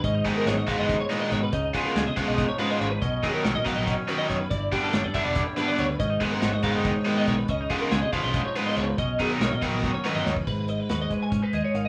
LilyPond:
<<
  \new Staff \with { instrumentName = "Clean electric guitar" } { \time 7/8 \key gis \dorian \tempo 4 = 141 dis''8 gis'16 ais'16 cis''16 dis''16 eis''16 dis''8 cis''16 b'16 dis''16 cis''16 b'16 | dis''8 gis'16 ais'16 cis''16 dis''16 eis''16 dis''8 cis''16 b'16 dis''16 cis''16 b'16 | dis''8 gis'16 ais'16 cis''16 dis''16 eis''16 dis''8 cis''16 b'16 dis''16 cis''16 b'16 | d''8 g'16 a'16 cis''16 d''16 e''16 d''8 cis''16 b'16 d''16 cis''16 b'16 |
dis''8 gis'16 ais'16 cis''16 dis''16 eis''16 dis''8 cis''16 b'16 dis''16 cis''16 b'16 | dis''8 gis'16 ais'16 cis''16 dis''16 eis''16 dis''8 cis''16 b'16 dis''16 cis''16 b'16 | dis''8 gis'16 ais'16 cis''16 dis''16 eis''16 dis''8 cis''16 b'16 dis''16 cis''16 b'16 | b'8 dis''16 b'16 b'16 dis''16 b'16 gis''8 b'16 dis''16 cis''16 eis''16 dis''16 | }
  \new Staff \with { instrumentName = "Clean electric guitar" } { \time 7/8 \key gis \dorian << { cis'16 dis'8. fis'2~ fis'8 | dis'4 gis'4 dis'4. | cis'4 ais'4 cis'4. | e'4 a'4 e'4. |
cis'16 dis'8. fis'4 dis'4. | cis'16 dis'8. gis'4 dis'4. | cis'4 ais'4 cis'4. | r4 fis'4 cis'16 dis'16 gis'4 | } \\ { gis,4. gis8 gis,8 ais,8 b,8 | cis4. eis4 gis,4 | b,4. fis4 fis,4 | g,4. g4 d4 |
gis,4. gis4 dis4 | cis4. eis4 gis,4 | b,4. fis4 fis,4 | gis,4. gis4. dis8 | } >> }
  \new Staff \with { instrumentName = "Overdriven electric guitar" } { \time 7/8 \key gis \dorian r8 <dis gis b dis'>8 r8 <dis gis b dis'>8 r8 <dis gis b dis'>8 r8 | r8 <cis gis b eis'>8 r8 <cis gis b eis'>8 r8 <cis gis b eis'>8 r8 | r8 <dis fis b dis'>8 r8 <dis fis b dis'>8 r8 <dis fis b dis'>8 r8 | r8 <d g b d'>8 r8 <d g b d'>8 r8 <d g b d'>8 r8 |
r8 <dis gis b dis'>8 r8 <dis gis b dis'>8 r8 <dis gis b dis'>8 r8 | r8 <cis gis b eis'>8 r8 <cis gis b eis'>8 r8 <cis gis b eis'>8 r8 | r8 <dis fis b dis'>8 r8 <dis fis b dis'>8 r8 <dis fis b dis'>8 r8 | r2. r8 | }
  \new Staff \with { instrumentName = "Fingered electric bass" } { \clef bass \time 7/8 \key gis \dorian gis,,8 r8 gis,,16 gis,8 fis,,8 r8. gis,8 | cis,8 r8 cis,16 cis8 b,,8 r8. gis,,8 | b,,8 r8 b,,16 b,8 ais,,8 r8. fis,8 | g,,8 r8 g,,16 g,8 e,,8 r8. d,8 |
gis,,8 r8 gis,,16 gis,8 fis,,8 r8. b,,8 | cis,8 r8 cis,16 cis8 b,,8 r8. cis,8 | b,,8 r8 b,,16 b,8 ais,,8 r8. dis,8 | gis,,4 dis,8 r8 gis,16 r16 dis,16 r16 gis,,8 | }
  \new DrumStaff \with { instrumentName = "Drums" } \drummode { \time 7/8 <hh bd>8 <hh bd>8 <hh sn>8 <hh bd>8 <hh bd>8 <hh sn>8 <hh bd sn>8 | <hh bd>8 <hh bd sn>8 <hh sn>8 <hh bd sn>8 <hh bd sn>8 hh8 hh8 | <hh bd>8 <hh bd sn>8 <hh sn>8 <hh bd>8 <hh bd>8 hh8 <hh bd>8 | <hh bd>8 <hh bd>8 <hh sn>8 <hh bd>8 <hh bd>8 <hh sn>8 <hh sn>8 |
<hh bd>8 <hh bd>8 <hh sn>8 <hh bd>8 <hh bd>8 <hh sn>8 <hh bd>8 | <hh bd>8 <hh bd>8 <hh sn>8 <hh bd>8 <hh bd>8 hh8 hh8 | <hh bd>8 <hh bd>8 <hh sn>8 <hh bd>8 <bd sn>16 tommh16 sn16 toml16 sn16 bd16 | <cymc bd>8 hh8 <hh sn>8 <hh bd>8 <hh bd>8 hh8 hh8 | }
>>